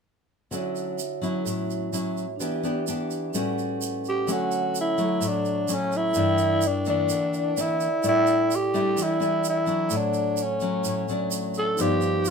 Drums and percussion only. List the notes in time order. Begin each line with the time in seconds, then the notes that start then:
0.52 shaker
0.76 shaker
0.99 shaker
1.23 shaker
1.46 shaker
1.70 shaker
1.93 shaker
2.17 shaker
2.40 shaker
2.64 shaker
2.87 shaker
3.11 shaker
3.34 shaker
3.59 shaker
3.82 shaker
4.05 shaker
4.28 shaker
4.52 shaker
4.75 shaker
4.98 shaker
5.22 shaker
5.45 shaker
5.68 shaker
5.92 shaker
6.14 shaker
6.38 shaker
6.62 shaker
6.85 shaker
7.09 shaker
7.34 shaker
7.57 shaker
7.81 shaker
8.03 shaker
8.27 shaker
8.51 shaker
8.75 shaker
8.97 shaker
9.22 shaker
9.44 shaker
9.67 shaker
9.90 shaker
10.14 shaker
10.37 shaker
10.60 shaker
10.84 shaker
11.08 shaker
11.31 shaker
11.54 shaker
11.78 shaker
12.01 shaker
12.25 shaker